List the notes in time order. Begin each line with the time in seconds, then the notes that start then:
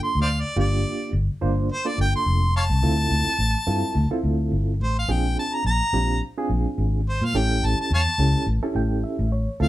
Already playing: A#3 D4 F4 A4
0.03 C6
0.15 D2
0.22 C5 D5 F5
0.41 D5
0.56 G1 A#3 D4 F4 G4 D5
1.13 G1
1.41 G1 A#3 D4 F4 C5
1.72 C5
1.85 A#3 D4 F4 A4 D5
1.98 G1 G5
2.16 C6
2.26 F1
2.57 C#5 F5 A5
2.70 C2
2.82 D2 C4 E4 F4 A4
3.11 D2
3.39 A1
3.67 G2 C4 E4 F4 A4
3.95 D2
4.11 C4 E4 F4 A4
4.24 D2
4.52 G1
4.80 A1 C5
4.99 F5
5.08 A#1 C4 D4 F4 G#4 G5
5.39 A5
5.54 A#5
5.65 A#1 A#5
5.93 A#1 C4 D4 F4 G4
6.38 C4 D4 F4 G#4
6.50 A#1
6.78 G#1
7.09 C5
7.22 A#2 F5
7.34 A1 C#4 E4 G4 A4 G5
7.63 A1 A5
7.81 A5
7.91 E2 C#5 F5 A5
8.18 C#2 C#4 E4 G4 A4
8.47 A1
8.63 C#4 E4 G4 A4
8.75 A1 G5
9.04 E5
9.19 A1
9.32 C#5
9.60 D2 C4 E4 F4 A4 F5